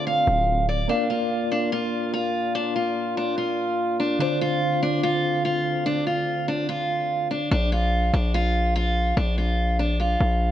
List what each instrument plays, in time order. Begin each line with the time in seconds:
Already playing: french horn section D3 A3 C4 F4, tine electric piano D3 C4 F4 D5
0.07 steel-string acoustic guitar F5
0.27 808-style bass D1
0.69 steel-string acoustic guitar D5
0.88 french horn section A#2 A#3 D4 F4, tine electric piano A#3 A#4 D5 F5, steel-string acoustic guitar D4
1.10 steel-string acoustic guitar F4
1.52 steel-string acoustic guitar D4
1.72 steel-string acoustic guitar F4
2.13 steel-string acoustic guitar F4
2.55 steel-string acoustic guitar D4
2.76 steel-string acoustic guitar F4
3.17 steel-string acoustic guitar D4
3.38 steel-string acoustic guitar F4
4.00 steel-string acoustic guitar D4
4.19 french horn section D2 D3 C4, tine electric piano D3 D4 F4 C5, steel-string acoustic guitar D4
4.41 steel-string acoustic guitar F4
4.83 steel-string acoustic guitar D4
5.03 steel-string acoustic guitar F4
5.45 steel-string acoustic guitar F4
5.86 steel-string acoustic guitar D4
6.07 steel-string acoustic guitar F4
6.48 steel-string acoustic guitar D4
6.69 steel-string acoustic guitar F4
7.31 steel-string acoustic guitar D4
7.51 808-style bass A#1, steel-string acoustic guitar D4
7.72 steel-string acoustic guitar F4
8.14 808-style bass A#1, steel-string acoustic guitar D4
8.34 steel-string acoustic guitar F4
8.76 steel-string acoustic guitar F4
9.17 808-style bass A#1, steel-string acoustic guitar D4
9.38 steel-string acoustic guitar F4
9.79 steel-string acoustic guitar D4
10.00 steel-string acoustic guitar F4
10.20 808-style bass A#1